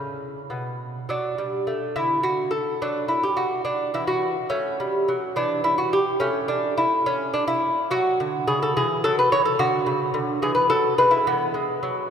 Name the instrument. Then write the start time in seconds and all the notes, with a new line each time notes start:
lute
Already playing: C#3 C#4
0.50 B2
1.09 F#3 D4
1.38 G3
1.67 A3
1.96 D3 E4
2.23 F#4
2.51 A4
2.82 F#3 D4
3.08 E4
3.23 G4
3.37 F#4
3.65 D4
3.94 E3 E4
4.07 F#4
4.49 A3 C#4
4.80 G3
5.08 F#3
5.36 E3 D4
5.64 E4
5.78 F#4
5.93 G4
6.20 A3 C#4
6.48 D4
6.78 E4
7.06 C#4
7.34 D4
7.47 E4
7.91 F#3 F#4
8.20 D3
8.47 C#3 G#4
8.62 A4
8.77 E3 G#4
9.04 F#3 A4
9.19 B4
9.32 E3 C#5
9.45 A4
9.59 D3 F#4
9.86 C#3
10.14 D3
10.42 E3 G#4
10.55 B4
10.70 F#3 A4
10.98 G#3 B4
11.11 E4
11.27 E3 B3
11.54 G#3
11.83 F#3